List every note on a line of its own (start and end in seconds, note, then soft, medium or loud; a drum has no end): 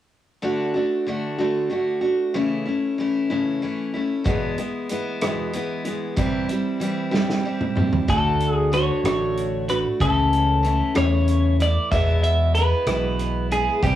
0.42 0.74 D3 medium
0.42 0.75 A3 medium
0.42 0.75 D4 medium
0.42 0.73 F#4 medium
0.74 1.07 A3 soft
0.74 1.07 D4 soft
0.74 1.06 F#4 medium
1.07 1.39 D3 medium
1.07 1.39 A3 medium
1.07 1.39 D4 medium
1.07 1.37 F#4 medium
1.38 1.68 D3 medium
1.38 1.69 A3 medium
1.38 1.70 D4 medium
1.38 1.70 F#4 medium
1.70 2.02 D3 medium
1.70 2.03 A3 medium
1.70 2.01 D4 medium
1.70 2.00 F#4 medium
2.01 2.33 A3 soft
2.01 2.34 D4 soft
2.01 2.34 F#4 soft
2.34 2.66 C#3 medium
2.34 2.66 E3 medium
2.34 2.66 A3 medium
2.34 2.65 C#4 medium
2.34 2.64 E4 medium
2.66 2.99 A3 soft
2.66 2.98 C#4 soft
2.66 2.98 E4 medium
2.98 3.30 E3 medium
2.98 3.30 A3 medium
2.98 3.30 C#4 medium
2.98 3.29 E4 medium
3.30 3.63 C#3 medium
3.30 3.61 E3 medium
3.30 3.62 A3 medium
3.30 3.63 C#4 medium
3.30 3.62 E4 medium
3.62 3.94 E3 medium
3.62 3.95 A3 medium
3.62 3.94 C#4 medium
3.62 3.93 E4 medium
3.94 4.26 A3 soft
3.94 4.27 C#4 soft
3.94 4.25 E4 medium
4.24 4.57 E2 medium
4.24 4.58 B2 medium
4.24 4.58 E3 medium
4.24 4.58 G#3 medium
4.24 4.58 B3 medium
4.24 4.57 E4 medium
4.24 kick loud
4.24 closed hi-hat medium
4.58 4.89 E3 soft
4.58 4.89 G#3 soft
4.58 4.90 B3 soft
4.58 4.90 E4 medium
4.58 closed hi-hat soft
4.89 5.22 E3 medium
4.89 5.21 G#3 medium
4.89 5.21 B3 medium
4.89 5.20 E4 medium
4.89 closed hi-hat medium
5.21 5.55 E2 medium
5.21 5.54 B2 medium
5.21 5.53 E3 medium
5.21 5.53 G#3 medium
5.21 5.54 B3 medium
5.21 5.54 E4 medium
5.21 cross-stick loud
5.21 closed hi-hat medium
5.53 5.86 E3 medium
5.53 5.86 G#3 medium
5.53 5.84 B3 medium
5.53 5.83 E4 medium
5.53 closed hi-hat medium
5.84 6.17 E3 soft
5.84 6.18 G#3 soft
5.84 6.17 B3 soft
5.84 6.17 E4 medium
5.84 closed hi-hat medium
6.16 6.49 C3 medium
6.16 6.49 E3 medium
6.16 6.50 G3 medium
6.16 6.49 C4 medium
6.16 6.47 E4 medium
6.16 kick loud
6.16 closed hi-hat medium
6.48 6.80 G3 soft
6.48 6.81 C4 soft
6.48 6.81 E4 medium
6.48 closed hi-hat medium
6.80 7.12 E3 medium
6.80 7.11 G3 medium
6.80 7.10 C4 medium
6.80 7.10 E4 medium
6.80 closed hi-hat medium
7.11 7.45 C3 medium
7.11 7.42 E3 medium
7.11 7.44 G3 medium
7.11 7.44 C4 medium
7.11 7.44 E4 medium
7.11 snare soft
7.30 snare soft
7.43 7.76 E3 medium
7.43 7.77 G3 medium
7.43 7.76 C4 medium
7.43 7.74 E4 medium
7.61 mid tom medium
7.75 8.08 G3 soft
7.75 8.09 C4 soft
7.75 8.08 E4 medium
7.75 mid tom medium
7.93 floor tom medium
8.08 8.89 D2 medium
8.08 8.71 D3 medium
8.08 8.72 A3 medium
8.08 8.72 D4 medium
8.08 8.73 F#4 medium
8.08 8.52 A4 medium
8.08 kick medium
8.08 closed hi-hat medium
8.41 closed hi-hat medium
8.52 8.69 G#4 medium
8.72 9.04 D3 medium
8.72 9.04 A3 medium
8.72 9.05 D4 medium
8.72 9.05 F#4 medium
8.72 9.65 C#5 medium
8.72 closed hi-hat medium
9.04 9.84 A1 medium
9.04 9.70 D3 medium
9.04 9.69 A3 medium
9.04 9.69 D4 medium
9.04 9.68 F#4 medium
9.04 cross-stick loud
9.04 closed hi-hat medium
9.37 closed hi-hat soft
9.69 10.01 A3 soft
9.69 10.01 D4 soft
9.69 10.00 F#4 soft
9.69 9.78 B4 medium
9.69 closed hi-hat medium
10.00 10.80 C#2 medium
10.00 10.64 C#3 medium
10.00 10.63 E3 medium
10.00 10.64 A3 medium
10.00 10.65 C#4 medium
10.00 10.66 E4 medium
10.00 10.97 A4 medium
10.00 kick loud
10.00 closed hi-hat medium
10.33 closed hi-hat soft
10.63 10.95 E3 medium
10.63 10.95 A3 medium
10.63 10.94 C#4 medium
10.63 10.94 E4 medium
10.63 closed hi-hat medium
10.95 11.76 E2 medium
10.95 11.60 C#3 medium
10.95 11.93 E3 medium
10.95 11.60 A3 medium
10.95 11.59 C#4 medium
10.95 11.59 E4 medium
10.95 11.56 C#5 medium
10.95 cross-stick loud
10.95 closed hi-hat medium
11.28 closed hi-hat medium
11.60 11.92 A3 soft
11.60 11.91 E4 soft
11.60 11.91 D5 loud
11.60 closed hi-hat medium
11.92 12.55 E2 medium
11.92 12.72 E2 medium
11.92 12.56 B2 medium
11.92 12.56 E3 medium
11.92 12.56 G#3 medium
11.92 12.56 B3 medium
11.92 12.59 E4 medium
11.92 12.21 E5 medium
11.92 kick loud
11.92 closed hi-hat medium
12.24 12.54 E5 medium
12.24 closed hi-hat medium
12.55 12.87 E3 medium
12.55 12.88 G#3 medium
12.55 12.87 B3 medium
12.55 13.46 B4 medium
12.55 closed hi-hat medium
12.59 12.87 E4 medium
12.87 13.67 B1 medium
12.87 13.52 E2 medium
12.87 13.52 B2 medium
12.87 13.52 E3 medium
12.87 13.52 G#3 medium
12.87 13.51 B3 medium
12.87 13.50 E4 medium
12.87 cross-stick loud
12.87 closed hi-hat medium
13.19 closed hi-hat medium
13.51 13.82 E3 soft
13.51 13.84 G#3 soft
13.51 13.83 B3 soft
13.51 13.83 E4 medium
13.51 13.83 G#4 medium
13.51 closed hi-hat medium
13.82 13.96 C2 medium
13.82 13.96 C3 medium
13.82 13.96 E3 medium
13.82 13.96 G3 medium
13.82 13.96 C4 medium
13.82 13.96 E4 medium
13.82 13.96 G4 medium
13.82 kick loud
13.82 closed hi-hat medium